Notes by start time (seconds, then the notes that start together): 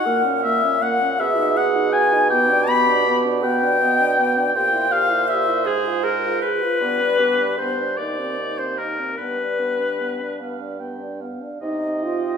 Already playing: F#5
0.06 A#2 A#3 A#4
0.25 C#4
0.43 A#3 E5
0.64 C#4
0.82 A#3 F#5
1.01 C#4
1.19 B2 F#4 G#4 E5
1.37 D#4
1.56 F#4 F#5
1.75 D#4
1.92 F#4 G#5
2.13 D#4
2.30 B3 G4 G5
2.50 D4
2.68 B3 B5
2.88 D4
3.07 B3
3.26 D4
3.42 B3 B4 G5
3.63 D4
3.81 B3 D#5
4.00 D4
4.18 B3 D5
4.37 D4
4.55 A#2 G4 C5 G5
4.73 E4
4.91 G4 F5
5.10 E4
5.28 G4 E5
5.48 E4
5.65 G#2 G#4
5.85 F4
6.03 G#4 A#4
6.24 F4
6.42 G#4 B4
6.62 F4
6.81 G2 B3 D5
7.01 D4
7.19 B3 G4
7.40 D4
7.58 B3 B4 C5
7.80 D4
7.97 D#2 D#4 C5 D5
8.19 C4
8.39 D#4
8.58 C4 C5
8.78 D#4 A#4
8.99 C4
9.17 G2 B3 B4 D5
9.39 D4
9.59 B3
9.80 D4
10.00 B3
10.21 D4
10.40 B3 F5
10.60 D4
10.80 B3 G5
11.01 D4
11.21 B3 F5
11.42 D4
11.61 C3 D#4 D#5
12.03 F4 C5 G5